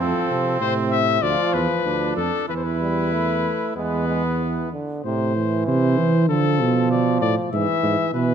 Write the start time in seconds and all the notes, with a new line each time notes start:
0.00 F2 F3 C4 A4
0.30 C3
0.60 A2 C3 C5
0.91 E5
1.22 D2 F3 F4 D5
1.53 E2 B4
1.85 D2 D4
2.17 F2 A4
2.49 E2 E3 E4 B4
2.56 C5
2.63 B4
2.80 G3
3.13 A3
3.76 E2 G#3 B3 B4
4.08 G#3
4.40 E3
4.72 D3
5.04 A2 C3 C5
5.36 E3
5.67 C3 C5
5.98 E3
6.29 D3 F3 A4
6.60 B2
6.91 D5
7.21 A2 D5
7.52 G#2 E3 E5
7.83 G#2
8.14 B2 E3 B4